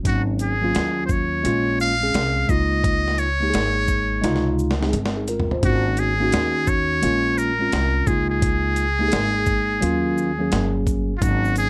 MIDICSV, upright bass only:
0, 0, Header, 1, 2, 480
1, 0, Start_track
1, 0, Key_signature, -5, "major"
1, 0, Tempo, 697674
1, 35, Time_signature, 4, 2, 24, 8
1, 8047, End_track
2, 0, Start_track
2, 0, Title_t, "Upright bass"
2, 0, Program_c, 0, 32
2, 36, Note_on_c, 0, 32, 88
2, 492, Note_off_c, 0, 32, 0
2, 520, Note_on_c, 0, 39, 85
2, 974, Note_off_c, 0, 39, 0
2, 999, Note_on_c, 0, 34, 93
2, 1453, Note_off_c, 0, 34, 0
2, 1477, Note_on_c, 0, 36, 85
2, 1704, Note_off_c, 0, 36, 0
2, 1714, Note_on_c, 0, 37, 87
2, 2407, Note_off_c, 0, 37, 0
2, 2437, Note_on_c, 0, 32, 72
2, 2892, Note_off_c, 0, 32, 0
2, 2917, Note_on_c, 0, 37, 88
2, 3372, Note_off_c, 0, 37, 0
2, 3395, Note_on_c, 0, 31, 93
2, 3851, Note_off_c, 0, 31, 0
2, 3875, Note_on_c, 0, 32, 92
2, 4331, Note_off_c, 0, 32, 0
2, 4357, Note_on_c, 0, 39, 81
2, 4812, Note_off_c, 0, 39, 0
2, 4840, Note_on_c, 0, 34, 86
2, 5294, Note_off_c, 0, 34, 0
2, 5319, Note_on_c, 0, 36, 88
2, 5545, Note_off_c, 0, 36, 0
2, 5554, Note_on_c, 0, 37, 82
2, 6247, Note_off_c, 0, 37, 0
2, 6283, Note_on_c, 0, 32, 77
2, 6735, Note_off_c, 0, 32, 0
2, 6760, Note_on_c, 0, 39, 93
2, 7214, Note_off_c, 0, 39, 0
2, 7242, Note_on_c, 0, 31, 90
2, 7695, Note_off_c, 0, 31, 0
2, 7719, Note_on_c, 0, 32, 91
2, 8047, Note_off_c, 0, 32, 0
2, 8047, End_track
0, 0, End_of_file